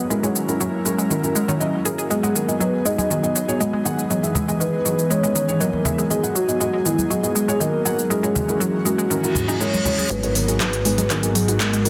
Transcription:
Already playing: F#3
0.10 F#3 G#3 A#3 C#4 E4 A#4, shaker
0.23 F#3 G#3 C#4 E4 C#5, shaker
0.35 D#3, shaker
0.48 F#3 C#4 E4 A#4, shaker
0.60 F#3 C#4 E4 A#4, shaker
0.85 F#3 G#3 C#4 E4 A#4, shaker
0.98 G#3, shaker
1.10 D#3 F#3 C#4 E4 A#4, shaker
1.23 F#3 C#4 E4 A#4, shaker
1.35 G#3, shaker
1.48 D#3 F#3 C#4 E4 C#5, shaker
1.60 F#3 C#4 E4 D#5, shaker
1.85 F#3 C#4 E4 G#4 A#4, shaker
1.98 G#4, shaker
2.10 F#3 G#3 B3 D#4 G#4 D#5, shaker
2.23 F#3 G#3 B3 G#4 F#5, shaker
2.35 D#3 A#4, shaker
2.48 F#3 B3 G#4 D#5, shaker
2.60 F#3 B3 G#4 B4 D#5, shaker
2.85 F#3 G#3 B3 G#4 D#5, shaker
2.98 G#3, high conga, shaker
3.10 D#3 F#3 B3 G#4 D#5, shaker
3.23 F#3 B3 G#4 D#5, shaker
3.35 F#3, shaker
3.48 F#3 B3 G#4 C#5, shaker
3.60 F#3 G#3 B3 G#4 D#5, shaker
3.73 G#3
3.85 D#3 F#3 B3 G#4 F#5, shaker
3.99 shaker
4.10 E3 F#3 B3 G#4 D#5, shaker
4.23 E3 B3 G#4 E5, shaker
4.35 G#3, low conga, shaker
4.48 E3 G#3 B3 G#4 D#5, shaker
4.60 D#3 E3 B3 G#4 B4 D#5, shaker
4.85 E3 F#3 B3 G#4 D#5, shaker
4.99 shaker
5.10 E3 G#3 B3 G#4 C#5 D#5, shaker
5.23 E3 G#3 B3 G#4 D#5, shaker
5.35 D#3, shaker
5.48 E3 B3 G#4 C#5, shaker
5.60 E3 F#3 B3 G#4 A#4 D#5, shaker
5.73 high conga
5.85 E3 G#3 B3 G#4 E5, high conga, low conga, shaker
5.98 G#3, shaker
6.10 D#3 F#3 B3 G#4 D#5, shaker
6.23 F#3 B3 G#4 F#5, shaker
6.35 F#3 F#4, shaker
6.48 F#3 B3 G#4 D#5, shaker
6.60 F#3 G#3 B3 G#4 D#5, shaker
6.73 G#3
6.85 D#3 F#3 B3 E4 G#4 D#5, shaker
6.99 high conga, shaker
7.10 F#3 B3 G#4 D#5, shaker
7.23 F#3 B3 G#4 D#5, shaker
7.35 G#3, shaker
7.48 F#3 G#3 B3 G#4 C#5, shaker
7.60 D#3 F#3 B3 G#4 A#4 D#5, shaker
7.85 F#3 B3 G#4 F#5, shaker
7.99 shaker
8.10 E3 F#3 G#3 A#3 C#4 E4 F#4 G#4 A#4, shaker
8.23 F#3 G#3 C#4 E4 C#5, shaker
8.35 D#3, low conga, shaker
8.48 F#3 C#4 E4 A#4, shaker
8.60 F#3 C#4 E4 A#4, shaker
8.85 F#3 G#3 C#4 E4 F#4 A#4, shaker
8.98 G#3, shaker
9.10 D#3 F#3 C#4 E4 A#4, reverse cymbal, shaker
9.23 F#3 C#4 E4 A#4, shaker
9.35 G#2, low conga, shaker
9.48 F#3 C#4 D#4 E4 G#4, shaker
9.60 F#3 G#3 C#4 E4 A#4 C#5, shaker
9.73 G#3, high conga, shaker
9.85 F#3 G#3 C#4 E4 C#5, high conga, low conga, shaker
9.98 G#4, high conga, shaker
10.10 G#1 F#3 G#3 B3 D#4 F#4 G#4 B4, kick, closed hi-hat, riser, shaker
10.23 F#3 G#3 B3 D#4 A#4, closed hi-hat
10.35 D#3 A#4, open hi-hat, shaker
10.48 F#3 B3 D#4 G#4, closed hi-hat, shaker
10.60 F#3 B3 D#4 B4, kick, clap, closed hi-hat, shaker
10.73 closed hi-hat
10.85 F#3 G#3 B3 D#4 G#4, open hi-hat, shaker
10.98 G#3, closed hi-hat, high conga, shaker
11.10 D#3 F#3 B3 D#4 G#4 A#4, kick, clap, closed hi-hat, shaker
11.23 F#3 B3 D#4 G#4, closed hi-hat, shaker
11.35 F#3 G#4, open hi-hat, shaker
11.48 F#3 B3 D#4 F#4, closed hi-hat, shaker
11.60 F#3 G#3 B3 D#4 G#4 A#4, kick, clap, closed hi-hat, shaker
11.73 G#3, closed hi-hat, shaker
11.85 D#3 F#3 B3 D#4 A#4, open hi-hat, shaker

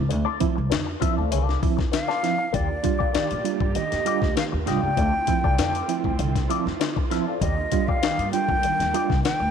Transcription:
Already playing: C#2
0.09 D2 D3, muted clean electric guitar stroke, closed hi-hat
0.25 C4 E4 F4 A4 D5
0.39 F3 C4 E4, muted clean electric guitar stroke, kick, closed hi-hat
0.56 C2, muted clean electric guitar stroke
0.70 F2 D3, muted clean electric guitar stroke, snare, closed hi-hat
0.86 muted clean electric guitar stroke
1.00 F3 C4 E4 F4 A4 E5, kick, closed hi-hat
1.17 D2 C4 E4 F4 A4 D5
1.31 C2 D3 B3 E4 G#4 C#5, closed hi-hat
1.43 C4 F4 A4 D5
1.49 snare
1.61 F3 C4 E4, muted clean electric guitar stroke, kick, open hi-hat
1.77 F2 C4 E4, muted clean electric guitar stroke, kick, snare
1.92 D3 F5, muted clean electric guitar stroke, snare, closed hi-hat
2.08 C4 F4 A4 D5, snare
2.22 F3 C4 E4, muted clean electric guitar stroke, snare, closed hi-hat
2.38 E4, muted clean electric guitar stroke
2.53 D#2 D3 D#3 A#3 F4 G4 D5, kick, closed hi-hat
2.69 D4 F4, muted clean electric guitar stroke
2.83 G3 D4 F4, muted clean electric guitar stroke, kick, closed hi-hat
2.99 A#3 F4 G4 D5, muted upright bass stroke, kick
3.13 D#3 A#3 F4 G4 D5, muted upright bass stroke, snare, closed hi-hat
3.31 A#2, closed hi-hat
3.44 G3 D4 F4, muted clean electric guitar stroke, closed hi-hat
3.60 G2 D4 F4, muted clean electric guitar stroke, kick
3.75 D#3 D#5, muted clean electric guitar stroke, muted upright bass stroke, closed hi-hat
3.92 F2, snare, closed hi-hat
4.05 G3 A#3 D4 F4 G4 D5, closed hi-hat
4.21 D2 D4 F4, muted clean electric guitar stroke, kick, snare
4.36 D#3 F5, muted clean electric guitar stroke, snare, closed hi-hat
4.52 D#2, muted clean electric guitar stroke
4.66 C2 G3 A#3 D4 F4 G4 D#5 G5, snare, closed hi-hat
4.83 C#2 A#3 F4 G4 D5
4.97 D2 D3 A3 C4 E4 F4 A4 D5, kick, closed hi-hat
5.13 C4 E4, muted clean electric guitar stroke
5.27 F3 C4 E4, muted clean electric guitar stroke, kick, closed hi-hat
5.44 C2 C4 F4 A4 D5, kick
5.58 F2 D3 C4 F4 A4 D5, snare, closed hi-hat
5.75 closed hi-hat
5.88 F3 C4 E4, muted clean electric guitar stroke, closed hi-hat
6.04 D2 C4 E4, muted clean electric guitar stroke, kick
6.19 C2 D3, muted clean electric guitar stroke, closed hi-hat
6.36 kick, snare, closed hi-hat
6.49 F3 C4 E4 F4 A4 D5, closed hi-hat
6.66 F2 C4 E4, muted clean electric guitar stroke, snare
6.80 D3, muted clean electric guitar stroke, snare, closed hi-hat
6.96 muted clean electric guitar stroke, kick
7.10 F3 C4 E4 F4 A4 E5, snare, closed hi-hat
7.27 C4 F4 A4 D5
7.40 D#2 D3 D#3 G3 A#3 D#4 G4 D5 D#5, kick, closed hi-hat
7.57 D4 F4, muted clean electric guitar stroke
7.72 G3 D4 F4, muted clean electric guitar stroke, kick, closed hi-hat
7.87 A#3 D#4 G4 D5 F5, muted upright bass stroke, kick
8.02 D#3 A#3 D#4 G4 D5, muted upright bass stroke, snare, closed hi-hat
8.18 G2, closed hi-hat
8.32 G3 D4 F4 G5, muted clean electric guitar stroke, closed hi-hat
8.49 F2 D4 F4, muted clean electric guitar stroke, kick
8.63 D#3, muted upright bass stroke, muted clean electric guitar stroke, closed hi-hat
8.80 D#2, snare, closed hi-hat
8.94 G3 A#3 D4 D#4 F4 G4 D5, closed hi-hat
9.10 C2 D4 F4, muted clean electric guitar stroke, kick, snare
9.24 D#3 G5, muted clean electric guitar stroke, snare, closed hi-hat
9.40 D2, muted clean electric guitar stroke

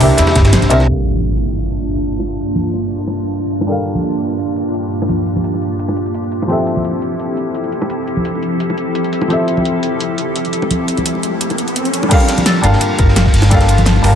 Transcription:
Already playing: C3 A#3 D4 E4 G4 A#4 D5 E5
0.00 C2 C4 D4 G4 A#4 E5, snare, open hi-hat, ride
0.18 E2 E4, snare, closed hi-hat, ride
0.27 snare, ride, high bongo
0.36 G1 E4, kick, snare, closed hi-hat, ride
0.45 snare, closed hi-hat, ride
0.52 A#1 C5, snare, closed hi-hat, ride
0.62 A#1, snare, closed hi-hat
0.69 C2 C3 C4 D4 A#4 E5, closed hi-hat, ride
0.80 snare, high bongo
0.86 G2 G3 A#3 D4 F4 A4 A#4 A5, closed hi-hat, impact
1.16 high conga
1.23 closed hi-hat
1.41 closed hi-hat
1.58 closed hi-hat
1.76 closed hi-hat
1.93 closed hi-hat
2.03 closed hi-hat
2.11 closed hi-hat
2.20 high bongo
2.28 closed hi-hat
2.46 closed hi-hat
2.55 high conga
2.64 closed hi-hat
2.73 high bongo
2.81 closed hi-hat
2.99 closed hi-hat
3.07 high bongo
3.16 closed hi-hat
3.34 closed hi-hat
3.43 closed hi-hat
3.51 closed hi-hat
3.61 high bongo
3.66 G3 D4 G4 A4 A#4, closed hi-hat
3.71 F5
3.86 closed hi-hat
3.95 high conga
4.04 closed hi-hat
4.21 closed hi-hat
4.39 closed hi-hat
4.56 closed hi-hat
4.74 closed hi-hat
4.83 closed hi-hat
4.92 closed hi-hat
5.02 high bongo
5.09 closed hi-hat, high conga
5.27 closed hi-hat
5.36 high bongo, high conga
5.44 closed hi-hat
5.54 high bongo
5.62 closed hi-hat
5.79 closed hi-hat
5.88 high bongo
5.97 closed hi-hat
6.06 closed hi-hat
6.14 closed hi-hat
6.24 closed hi-hat
6.32 closed hi-hat
6.42 high bongo
6.47 F3 C4 E4 G4 A4, closed hi-hat
6.52 E5
6.67 closed hi-hat
6.77 high conga
6.85 closed hi-hat
7.02 closed hi-hat
7.20 closed hi-hat
7.37 closed hi-hat
7.55 closed hi-hat
7.64 closed hi-hat
7.72 closed hi-hat
7.82 high bongo
7.90 closed hi-hat
8.08 closed hi-hat
8.17 high conga
8.25 closed hi-hat
8.35 high bongo
8.43 closed hi-hat
8.60 closed hi-hat
8.70 high bongo
8.78 closed hi-hat
8.95 closed hi-hat
9.04 closed hi-hat
9.13 closed hi-hat
9.21 high bongo
9.28 F3 C4 G4 A4, closed hi-hat, riser
9.33 E5
9.48 closed hi-hat
9.57 high conga
9.65 closed hi-hat
9.83 closed hi-hat
10.00 closed hi-hat
10.18 closed hi-hat
10.36 closed hi-hat
10.45 closed hi-hat
10.53 closed hi-hat
10.62 high bongo
10.71 closed hi-hat, high conga
10.88 closed hi-hat
10.97 closed hi-hat, high bongo, high conga
11.06 closed hi-hat
11.15 high bongo
11.23 closed hi-hat
11.41 closed hi-hat
11.50 closed hi-hat, high bongo
11.58 closed hi-hat
11.68 closed hi-hat
11.76 closed hi-hat
11.85 closed hi-hat
11.94 closed hi-hat
12.03 high bongo
12.08 G3 A#3 D4 F4 A4 A#4 A5, kick, closed hi-hat, crash, ride
12.13 F5
12.20 closed hi-hat
12.28 snare, closed hi-hat, ride
12.38 closed hi-hat, high conga
12.46 A4, snare, closed hi-hat, ride
12.61 G1 G3 A#3 D4 F4 A5, snare, closed hi-hat, ride
12.66 F5
12.73 snare
12.81 closed hi-hat, ride
12.99 G1 A#4, kick, closed hi-hat, ride
13.08 snare
13.16 F4, snare, closed hi-hat, ride
13.26 kick, snare
13.34 G1, closed hi-hat, open hi-hat
13.42 snare, closed hi-hat, high bongo
13.49 G3 A#3 D4 A4, kick, closed hi-hat, ride
13.54 F5
13.60 snare, closed hi-hat
13.68 F4, closed hi-hat, ride
13.78 closed hi-hat, high conga
13.86 snare, closed hi-hat, ride
13.96 high bongo
14.01 G1 G3 D4 A#4 A5, open hi-hat, ride
14.07 F5

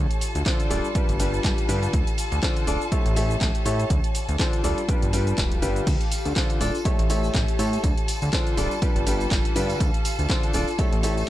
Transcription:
Already playing: F4 G4 A4 A5
0.11 D5, closed hi-hat, cabasa
0.21 C6, open hi-hat, cabasa
0.35 D2, closed hi-hat, cabasa
0.46 D3 D4 F4 A4 C5, kick, clap, closed hi-hat, cabasa
0.60 closed hi-hat, cabasa
0.70 D1 G3 D4 F4 A4 D5, open hi-hat, cabasa
0.85 cabasa
0.95 G3 D4 F4 G4 B4, kick, closed hi-hat, cabasa
1.09 G1, closed hi-hat, cabasa
1.20 G3 D4 F4 G4 B4 F5, open hi-hat, cabasa
1.34 cabasa
1.44 G1, kick, clap, closed hi-hat, cabasa
1.58 closed hi-hat, cabasa
1.69 G2 D3 D4 F4 G4 B4, open hi-hat, cabasa
1.83 closed hi-hat, cabasa
1.93 D2 F4, kick, closed hi-hat, cabasa
2.07 D5 C6, closed hi-hat, cabasa
2.18 open hi-hat, cabasa
2.32 D2, closed hi-hat, cabasa
2.43 D3 D4 F4 A4 C5, kick, clap, closed hi-hat, cabasa
2.57 closed hi-hat, cabasa
2.67 D1 D4 F4 A4 D5, open hi-hat, cabasa
2.81 cabasa
2.92 A3 E4 G4 A4 C#5, kick, closed hi-hat, cabasa
3.06 A1, closed hi-hat, cabasa
3.16 A3 E4 G4 A4 C#5, open hi-hat, cabasa
3.25 C#5
3.31 cabasa
3.36 A5
3.41 A1, kick, clap, closed hi-hat, cabasa
3.55 closed hi-hat, cabasa
3.66 A2 E4 G4 A4 C#5, open hi-hat, cabasa
3.79 closed hi-hat, cabasa
3.90 D2 F4, kick, closed hi-hat, cabasa
3.96 D5
4.04 closed hi-hat, cabasa
4.15 open hi-hat, cabasa
4.29 D2, closed hi-hat, cabasa
4.39 D3 D4 F4 A4 C5, kick, clap, closed hi-hat, cabasa
4.53 closed hi-hat, cabasa
4.64 D1 G3 D4 F4 A4 D5, open hi-hat, cabasa
4.78 closed hi-hat, cabasa
4.89 G3 D4 F4 G4 B4, kick, closed hi-hat, cabasa
5.02 G1, closed hi-hat, cabasa
5.13 G3 D4 F4 G4 B4, open hi-hat, cabasa
5.17 F5 B5
5.27 closed hi-hat, cabasa
5.38 D1, kick, clap, closed hi-hat, cabasa
5.52 closed hi-hat, cabasa
5.62 G1 D3 D4 F4 G4 B4, open hi-hat, cabasa
5.76 closed hi-hat, cabasa
5.87 D2 F4 A4 A5, kick, closed hi-hat, crash, tambourine, cabasa
6.01 closed hi-hat, cabasa
6.12 open hi-hat, tambourine, cabasa
6.22 D2 C6, closed hi-hat, tambourine, cabasa
6.36 D3 D4 F4 A4 C5, kick, clap, closed hi-hat, tambourine, cabasa
6.50 closed hi-hat, cabasa
6.61 D1 D4 F4 A4 D5, open hi-hat, tambourine, cabasa
6.75 tambourine, cabasa
6.85 A3 E4 G4 A4 C#5, kick, closed hi-hat, tambourine, cabasa
6.99 A1, closed hi-hat, cabasa
7.09 A3 E4 G4 A4 C#5, open hi-hat, tambourine, cabasa
7.23 tambourine, cabasa
7.30 A5
7.34 A1, kick, clap, closed hi-hat, tambourine, cabasa
7.48 closed hi-hat, cabasa
7.59 A2 E4 G4 A4 C#5, open hi-hat, tambourine, cabasa
7.73 closed hi-hat, tambourine, cabasa
7.83 D2 F4, kick, closed hi-hat, tambourine, cabasa
7.93 D5 C6
7.98 closed hi-hat, cabasa
8.08 open hi-hat, tambourine, cabasa
8.22 D2, closed hi-hat, tambourine, cabasa
8.33 D3 D4 F4 A4 C5, kick, clap, closed hi-hat, tambourine, cabasa
8.47 closed hi-hat, cabasa
8.57 D1 G3 D4 F4 A4 D5, open hi-hat, tambourine, cabasa
8.71 tambourine, cabasa
8.82 G3 D4 F4 G4 B4, kick, closed hi-hat, tambourine, cabasa
8.96 G1, closed hi-hat, cabasa
9.07 G3 D4 F4 G4 B4, open hi-hat, tambourine, cabasa
9.19 F5, tambourine, cabasa
9.31 G1, kick, clap, closed hi-hat, tambourine, cabasa
9.45 closed hi-hat, cabasa
9.56 G2 D3 D4 F4 G4 B4, open hi-hat, tambourine, cabasa
9.70 closed hi-hat, tambourine, cabasa
9.80 D2 F4, kick, closed hi-hat, tambourine, cabasa
9.94 closed hi-hat, cabasa
10.02 D5, open hi-hat, tambourine, cabasa
10.19 D2, closed hi-hat, tambourine, cabasa
10.29 D3 D4 F4 A4 C5, kick, clap, closed hi-hat, tambourine, cabasa
10.43 closed hi-hat, cabasa
10.53 D1 D4 F4 A4 D5, open hi-hat, tambourine, cabasa
10.67 tambourine, cabasa
10.78 A3 E4 G4 A4 C#5, kick, closed hi-hat, tambourine, cabasa
10.93 A1 C#5, closed hi-hat, cabasa
11.03 A3 E4 G4 A4 C#5, open hi-hat, tambourine, cabasa
11.17 tambourine, cabasa
11.24 A5

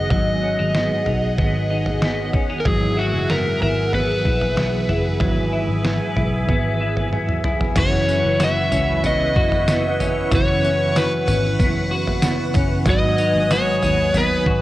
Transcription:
Already playing: F#3 B3 D#4 F#4 G#4 D#5 F#5
0.10 G#1 G#2 D#3 F#3 B3 F#4 D#5, kick, floor tom
0.43 C#4
0.59 G#1 D#4
0.75 B3, snare
1.05 B1 B3 D#4 F#4, floor tom
1.11 F#3
1.38 G#1 D#3 F#3 B3, kick, floor tom
1.43 F#4
1.71 D#4
1.86 floor tom
2.01 D#3 F#3 B3, snare
2.05 B3 F#4
2.34 C#4, kick, floor tom
2.50 D#4
2.60 A#4
2.65 G#1 G#2 E3 F#3 B3 G#4 E5 F#5, kick, floor tom
2.69 E4
2.97 E4 F#4
3.14 F#1
3.30 B3 A#4, snare
3.61 G#1 B3 E4 A#4, floor tom
3.66 F#3
3.93 E3 F#3 B3 B4, floor tom
3.97 B3 E4
4.25 A#1 E4, kick
4.41 floor tom
4.55 B1 E3 F#3 B3, snare
4.59 B3 E4
4.89 F#1 E4, floor tom
5.19 G#1 G#2 E3 F#3 G#5, kick, floor tom
5.23 F#3 B3 E4
5.53 E4
5.69 G#1
5.84 B3, snare
6.16 B1 E4, floor tom
6.47 G#1 E3 F#3 B3, kick, floor tom
6.52 E4
6.81 E4
6.97 floor tom
7.10 E3 F#3 B3, high tom
7.14 B3 E4
7.29 mid tom
7.44 E4, mid tom
7.61 floor tom
7.74 F#1 F#2 C#3 E3 E4 F#4 B4 F#5 C#6, kick, floor tom, crash, tambourine
7.79 E3 B3 E4 C#5
8.08 C#4, tambourine
8.25 F#1
8.40 F#4 E5, snare, tambourine
8.72 C#2 C#4, floor tom, tambourine
9.04 C#3 E3 B3 D#5, floor tom, tambourine
9.09 E4
9.36 F#1 F#4, kick
9.52 floor tom
9.67 C#3 E3 B3, snare, tambourine
9.72 E4
10.00 C#4, floor tom, tambourine
10.31 F#1 F#2 C#3 E3 B3 F#4 C#5, kick, floor tom, tambourine
10.36 E4
10.64 C#4, tambourine
10.96 F#4 B4, snare, tambourine
11.26 G#1 B3 C#4 E4, floor tom, tambourine
11.32 E3
11.59 F#1 C#3 E3 B3, kick, floor tom, tambourine
11.64 E4
11.91 F#4
12.07 floor tom
12.22 C#3 E3 B3, snare, tambourine
12.27 B3 E4
12.54 F#1 C#4, kick, floor tom, tambourine
12.85 G#1 G#2 D#3 F#3 F#4 G#5 D#6, kick, floor tom, tambourine
12.90 F#3 B3 D#4 D#5
13.18 D#4, tambourine
13.35 G#1
13.50 F#4 C#5, snare, tambourine
13.82 D#2 D#4, floor tom, tambourine
14.13 D#3 F#3 B3 B4, floor tom, tambourine
14.18 B3 D#4
14.46 G#1 F#4, kick

